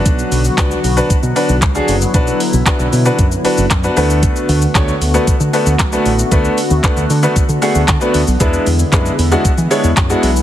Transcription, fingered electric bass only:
\new Staff \with { instrumentName = "Fingered electric bass" } { \clef bass \time 4/4 \key d \lydian \tempo 4 = 115 b,,8 b,,8 cis,8 b,,8 r16 b,16 r16 b,,16 cis,8 fis,,8 | b,,8 r16 b,,16 r16 b,,16 b,8 fis,8 r16 fis,,16 fis,8 d,8~ | d,8 d,8 d,8 d,8 r16 d16 r16 d,16 b,,8 a,,8 | d,8 r16 d,16 r16 d,16 d8 r16 d16 r16 d,16 d16 r16 d,16 b,,16 |
e,8 e,8 fis,8 e,8 r16 e16 r16 e,16 fis,8 b,,8 | }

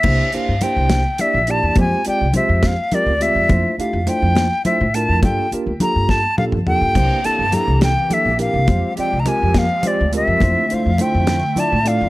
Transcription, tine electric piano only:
\new Staff \with { instrumentName = "Tine electric piano" } { \time 6/8 \key c \mixolydian \tempo 4. = 69 <bes d' e' g' c''>8 <bes d' e' g' c''>8 <bes d' e' g' c''>8 r8 <bes d' e' g' d''>8 <bes d' e' g' d''>8 | <aes c' f' g' c''>8 <aes c' f' g' d''>8 <aes c' f' g' c''>8 r8 <aes c' f' g' bes'>8 <aes c' f' g' d''>8 | <a d' e' f' c''>8 <a d' e' f' g'>8 <a d' e' f' c''>8 r8 <a d' e' f' c''>8 <a d' e' f' bes'>8 | <bes d' f' g' a'>8 <bes d' f' g' bes'>8 <bes d' f' g' a'>8 r8 <bes d' f' g' a'>8 <bes d' f' g' a'>8 |
<bes d' e' g' c''>8 <bes d' e' g' a'>8 <bes d' e' g' a'>8 r8 <bes d' e' g' a'>8 <bes d' e' g' bes'>8 | <aes c' f' g' c''>8 <aes c' f' g' d''>8 <aes c' f' g' bes'>8 r8 <aes c' f' g' c''>8 <aes c' f' g' bes'>8 | <a d' e' f' c''>8 <a d' e' f' c''>8 <a d' e' f' c''>8 r8 <a d' e' f' d''>8 <a d' e' f' d''>8 | }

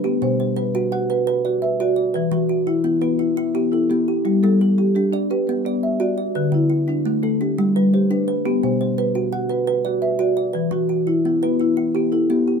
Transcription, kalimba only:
<<
  \new Staff \with { instrumentName = "Kalimba" } { \time 12/8 \key b \phrygian \tempo 4. = 114 <g' b'>4 c''8 b'4 fis''8 b'4 d''8 e''4 d''8 | b'4 fis'8 e'4 b'8 e'4 g'8 a'4 g'8 | e'4 a'8 g'4 d''8 g'4 d''8 e''4 d''8 | b'4 e'8 d'4 a'8 d'4 b'8 c''4 b'8 |
g'4 c''8 b'4 fis''8 b'4 d''8 e''4 d''8 | b'4 fis'8 e'4 b'8 e'4 g'8 a'4 g'8 | }
  \new Staff \with { instrumentName = "Kalimba" } { \time 12/8 \key b \phrygian r8 b,4 r8 fis'4 r8 b'4 r8 fis'4 | r8 e4 r8 b4 r8 e'4 r8 b4 | r8 g4 r8 d'4 r8 b4 r8 fis'4 | r8 d4 r8 a4 r8 g4 r8 d'4 |
r8 b,4 r8 fis'4 r8 b'4 r8 fis'4 | r8 e4 r8 b4 r8 e'4 r8 b4 | }
>>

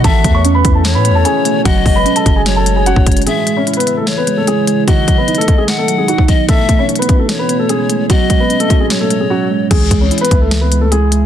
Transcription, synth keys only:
\new Staff \with { instrumentName = "Synth keys" } { \clef bass \time 4/4 \key cis \minor \tempo 4 = 149 e8 a8 cis'8 e'8 e8 a8 cis'8 a8 | fis8 gis8 cis'8 fis'8 fis8 gis8 cis'8 gis8 | e8 gis8 e'8 e''8 e8 gis8 e'8 gis8 | dis8 fis8 dis'8 dis''8 dis8 fis8 dis'8 fis8 |
e8 a8 cis'8 e'8 e8 b8 cis'8 a8 | fis8 gis8 cis'8 fis'8 fis8 gis8 cis'8 gis8 | e8 gis8 e'8 e''8 e8 gis8 e'8 gis8 | }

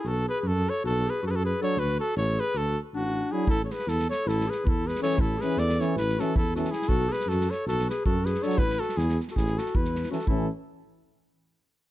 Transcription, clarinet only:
\new Staff \with { instrumentName = "Clarinet" } { \time 9/8 \key a \major \tempo 4. = 106 fis'8 gis'16. gis'32 fis'8 a'8 fis'8 gis'8 fis'32 gis'32 fis'16 gis'8 a'8 | fis'8 fis'8 a'8 gis'8 fis'8 r8 d'4 e'8 | e'16. a'32 gis'8 e'8 a'8 e'8 gis'8 e'8 gis'8 a'8 | e'8 gis'8 a'8 a'8 e'8 fis'8 e'8 fis'8 e'8 |
fis'8 gis'8 fis'8 a'8 fis'8 gis'8 fis'8 gis'8 a'8 | e'8 fis'8 e'8 r16. fis'32 e'8 fis'8 e'4 fis'8 | e'8 r1 | }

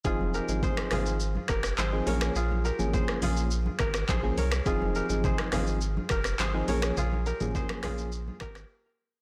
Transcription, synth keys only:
\new Staff \with { instrumentName = "Synth keys" } { \time 4/4 \key f \minor \tempo 4 = 104 <f c' ees' aes'>8. <f c' ees' aes'>8. <f c' ees' aes'>8 r4 r16 <f c' ees' aes'>16 <f bes des' aes'>8 | r8. <f bes des' aes'>8. <f bes des' aes'>8 r4 r16 <f bes des' aes'>16 r8 | <f c' ees' aes'>8. <f c' ees' aes'>8. <f c' ees' aes'>8 r4 r16 <f c' ees' aes'>16 <f bes des' aes'>8 | r8. <f bes des' aes'>8. <f bes des' aes'>8 r2 | }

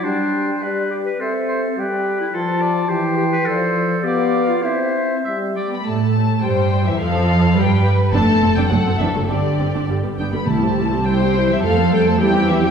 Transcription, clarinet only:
\new Staff \with { instrumentName = "Clarinet" } { \time 2/4 \key c \major \tempo 4 = 104 d'4 r8 g'16 b'16 | a'4 g'8. e'16 | f'4 g'8 g'16 b'16 | a'4 g'8. f'16 |
e'4 r4 | r2 | r2 | r2 |
r2 | r2 | r2 | }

